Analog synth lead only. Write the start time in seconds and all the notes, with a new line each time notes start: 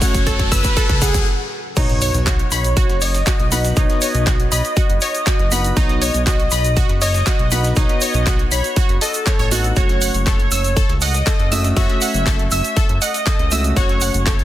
Already playing: C#5
0.52 B4
1.02 G#4
1.77 C#5
2.27 C#5
3.02 D#5
3.77 D#5
4.52 D#5
5.02 D#5
5.77 D#5
6.27 D#5
7.02 D#5
7.77 D#5
8.52 C#5
9.01 A4
9.77 C#5
10.27 C#5
11.02 D#5
11.77 E5
12.52 E5
13.02 D#5
13.77 C#5
14.27 C#5